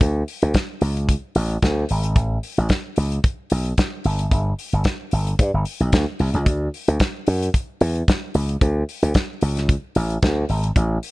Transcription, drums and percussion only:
0.01 kick loud
0.01 closed hi-hat medium
0.28 open hi-hat medium
0.42 closed hi-hat soft
0.54 kick loud
0.54 snare loud
0.54 closed hi-hat medium
0.81 open hi-hat medium
0.97 closed hi-hat medium
1.09 kick loud
1.09 closed hi-hat medium
1.35 open hi-hat medium
1.50 closed hi-hat soft
1.62 kick loud
1.62 snare loud
1.62 closed hi-hat medium
1.89 open hi-hat medium
2.03 closed hi-hat medium
2.16 kick loud
2.16 closed hi-hat medium
2.43 open hi-hat medium
2.57 closed hi-hat soft
2.69 kick medium
2.69 snare medium
2.69 closed hi-hat medium
2.96 open hi-hat medium
3.12 closed hi-hat medium
3.24 kick loud
3.24 closed hi-hat medium
3.50 open hi-hat medium
3.65 closed hi-hat soft
3.78 kick loud
3.78 snare loud
3.78 closed hi-hat medium
4.04 open hi-hat medium
4.19 closed hi-hat medium
4.31 kick loud
4.31 closed hi-hat medium
4.59 open hi-hat medium
4.73 closed hi-hat soft
4.84 kick loud
4.84 snare loud
4.84 closed hi-hat medium
5.11 open hi-hat medium
5.27 closed hi-hat soft
5.39 kick loud
5.39 closed hi-hat medium
5.65 open hi-hat medium
5.80 closed hi-hat soft
5.92 kick loud
5.92 snare loud
5.92 closed hi-hat medium
6.19 open hi-hat medium
6.34 closed hi-hat medium
6.46 kick loud
6.46 closed hi-hat medium
6.74 open hi-hat medium
6.88 closed hi-hat soft
7.00 kick loud
7.00 snare loud
7.00 closed hi-hat medium
7.26 open hi-hat medium
7.42 closed hi-hat medium
7.54 kick loud
7.54 closed hi-hat medium
7.81 open hi-hat medium
7.96 closed hi-hat soft
8.08 kick loud
8.08 snare loud
8.08 closed hi-hat medium
8.34 open hi-hat medium
8.49 closed hi-hat medium
8.61 kick loud
8.61 closed hi-hat medium
8.89 open hi-hat medium
9.03 closed hi-hat medium
9.14 kick loud
9.14 snare loud
9.14 closed hi-hat medium
9.41 open hi-hat medium
9.57 snare soft
9.57 closed hi-hat medium
9.69 kick loud
9.69 closed hi-hat medium
9.95 open hi-hat medium
10.10 closed hi-hat soft
10.22 kick loud
10.22 snare loud
10.22 closed hi-hat medium
10.49 open hi-hat medium
10.64 closed hi-hat medium
10.76 kick loud
10.76 closed hi-hat medium
11.03 open hi-hat medium

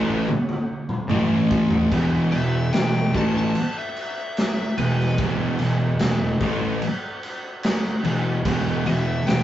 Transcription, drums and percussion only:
0.28 high tom medium
0.49 high tom medium
0.89 mid tom medium
1.10 mid tom medium
1.51 kick loud
1.71 floor tom loud
1.92 kick loud
1.92 crash medium
2.32 crash medium
2.73 snare loud
2.73 crash medium
3.14 kick loud
3.14 crash medium
3.55 crash medium
3.96 crash medium
4.37 snare loud
4.37 crash medium
4.78 crash medium
4.99 snare soft
5.18 kick loud
5.18 crash medium
5.59 snare soft
5.59 crash medium
5.99 snare loud
5.99 crash medium
6.40 kick loud
6.40 crash medium
6.82 crash medium
7.23 crash medium
7.63 snare loud
7.63 crash medium
8.04 crash medium
8.45 kick loud
8.45 crash medium
8.86 snare soft
8.86 crash medium
9.27 snare loud
9.27 crash medium

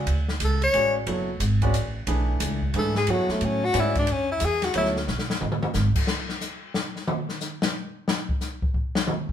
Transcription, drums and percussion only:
0.07 ride medium
0.29 snare medium
0.40 hi-hat pedal medium
0.40 ride medium
0.62 ride medium
0.74 ride medium
1.07 ride medium
1.40 hi-hat pedal medium
1.40 ride medium
1.62 kick medium
1.62 ride soft
1.74 hi-hat pedal medium
1.74 ride medium
2.07 ride medium
2.40 hi-hat pedal medium
2.40 ride medium
2.62 kick soft
2.74 ride medium
2.95 snare medium
3.07 ride medium
3.29 snare soft
3.41 ride medium
3.74 hi-hat pedal medium
3.74 ride medium
3.95 kick medium
3.95 ride medium
4.07 ride medium
4.40 hi-hat pedal medium
4.40 ride medium
4.62 snare medium
4.62 ride soft
4.74 ride medium
4.85 snare soft
4.96 snare soft
5.08 snare medium
5.19 snare medium
5.30 snare medium
5.41 mid tom medium
5.52 mid tom medium
5.63 mid tom loud
5.74 snare medium
5.74 hi-hat pedal medium
5.95 kick medium
5.95 crash medium
6.07 snare medium
6.29 snare soft
6.41 snare soft
6.41 hi-hat pedal medium
6.74 snare medium
6.96 snare soft
7.08 mid tom loud
7.29 snare soft
7.41 snare soft
7.41 hi-hat pedal medium
7.62 snare loud
8.08 snare loud
8.29 kick medium
8.41 snare soft
8.41 hi-hat pedal medium
8.62 kick medium
8.74 kick medium
8.95 snare medium
9.07 mid tom loud
9.29 kick medium

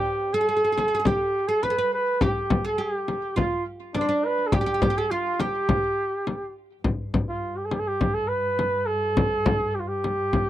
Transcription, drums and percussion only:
0.78 frame drum medium
1.05 frame drum medium
1.63 frame drum medium
2.21 frame drum medium
2.50 frame drum medium
3.08 frame drum medium
3.37 frame drum medium
3.95 frame drum medium
4.52 frame drum medium
4.82 frame drum medium
5.40 frame drum medium
5.69 frame drum medium
6.27 frame drum medium
6.84 frame drum medium
7.14 frame drum medium
7.71 frame drum medium
8.01 frame drum medium
8.59 frame drum medium
9.17 frame drum medium
9.46 frame drum loud
10.04 frame drum medium
10.33 frame drum medium

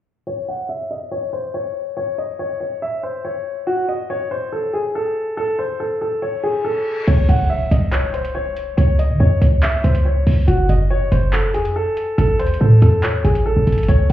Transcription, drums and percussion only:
7.08 closed hi-hat medium
7.08 crash medium
7.29 closed hi-hat medium
7.71 closed hi-hat medium
7.93 clap loud
7.93 closed hi-hat medium
8.14 closed hi-hat medium
8.25 closed hi-hat medium
8.57 closed hi-hat medium
8.78 closed hi-hat medium
8.99 closed hi-hat medium
9.42 closed hi-hat medium
9.63 clap loud
9.63 closed hi-hat medium
9.84 closed hi-hat medium
9.95 closed hi-hat medium
10.27 open hi-hat medium
10.48 closed hi-hat medium
10.69 closed hi-hat medium
11.12 closed hi-hat medium
11.33 clap loud
11.33 closed hi-hat medium
11.54 closed hi-hat medium
11.65 closed hi-hat medium
11.97 closed hi-hat medium
12.18 closed hi-hat medium
12.40 closed hi-hat medium
12.47 closed hi-hat medium
12.54 closed hi-hat soft
12.82 closed hi-hat medium
13.03 clap loud
13.03 closed hi-hat medium
13.25 closed hi-hat medium
13.35 closed hi-hat medium
13.67 closed hi-hat medium
13.72 closed hi-hat medium
13.78 closed hi-hat medium
13.83 closed hi-hat medium
13.88 closed hi-hat medium

